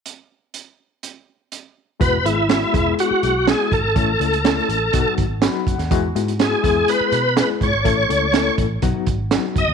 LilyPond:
<<
  \new Staff \with { instrumentName = "Tonewheel organ" } { \time 4/4 \key e \major \tempo 4 = 123 r1 | b'8 e'4. fis'4 gis'8 a'8~ | a'2~ a'8 r4. | r4 gis'4 b'4 b'8 cis''8~ |
cis''4. r2 dis''8 | }
  \new Staff \with { instrumentName = "Reed electric piano" } { \time 4/4 \key e \major r1 | <gis b e' fis'>8 <gis b e' gis'>8 <gis b e' fis'>8 <gis b e' gis'>4 r8 <gis b e' fis'>8 r8 | <a cis' e' a'>8 <a cis' e' a'>8 <a cis' e' a'>8 r8 <fis b dis' fis'>8 r8 <fis b dis' fis' b''>8 fis''8 | <gis b e' fis'>8 <gis b e' fis'>8 <gis b e' fis'>8 <gis b e' gis'>4 r8 <gis b e' gis'>8 r8 |
<a cis' e' a'>8 <a cis' e' a'>8 <a cis' e' a'>8 r8 <fis b dis' fis'>8 r8 <fis b dis' fis'>8 r8 | }
  \new Staff \with { instrumentName = "Picked electric bass" } { \clef bass \time 4/4 \key e \major r1 | e,,8 gis,,4 e,,8 r8 b,,8. r16 gis,,16 gis,,16 | a,,8 cis,4 a,,8 b,,16 r16 gis,,8. r16 fis,,16 dis,16 | e,8 gis,4 e,8 r8 b,8. r16 gis,16 gis,,16 |
a,,8 cis,4 a,,8 b,,16 r16 gis,,8. r16 fis,,16 dis,16 | }
  \new DrumStaff \with { instrumentName = "Drums" } \drummode { \time 4/4 hh4 hh4 hh4 hh4 | <hh bd>8 hh8 <hh sn>8 <hh bd>8 hh8 hh8 <hh sn>8 <hh bd>8 | <hh bd>8 hh16 hh16 <hh sn>8 hh8 <hh bd>8 <hh bd>8 <hh sn>8 <hh bd>16 <hh sn>16 | <hh bd>8 hh16 hh16 <hh sn>8 <hh bd>8 hh8 hh8 <hh sn>8 <hh bd>8 |
<hh bd>8 hh8 <hh sn>8 <hh bd>8 <hh bd>8 <hh bd>8 <hh sn>8 <hh bd>8 | }
>>